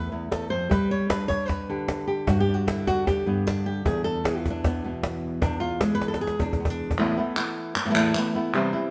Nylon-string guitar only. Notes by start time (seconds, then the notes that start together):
Already playing: E2 A3 B4
0.12 E2 E4
0.31 E2 A4
0.50 F2 C5
0.69 G3 B4
0.91 C#5
1.10 D4 B4
1.28 C#5
1.48 B4
1.70 D3 G4
2.07 G4
2.27 G2 F#4
2.40 G4
2.49 D4
2.54 F#4
2.67 D3 E4
2.87 F#4
3.07 G4
3.26 G2 B3
3.47 D4
3.66 G4
3.85 E2 G#4
4.04 A4
4.24 E3 G#4
4.37 F4
4.50 D4
4.66 B3
4.84 B2 B3
5.42 E2 D4
5.60 F4
5.81 G#3 G#4
5.95 B4
6.08 A4
6.21 G#4
6.39 E2 D4
6.60 B3
6.70 D4
6.98 E2 A2 E3 A3 B3 E4
7.17 E3 A3 B3 E4
7.36 E3 A3 B3 E4
7.75 muted nylon-string guitar stroke
7.85 A2 E3 A3 B3 E4
7.90 A2 E3 A3 B3 E4
7.94 E2 A2 E3 A3 B3 E4
8.15 E3 A3 B3 E4
8.35 E3 A3 B3 E4
8.54 C3 E3 G3 C4 E4
8.73 G3 C4 E4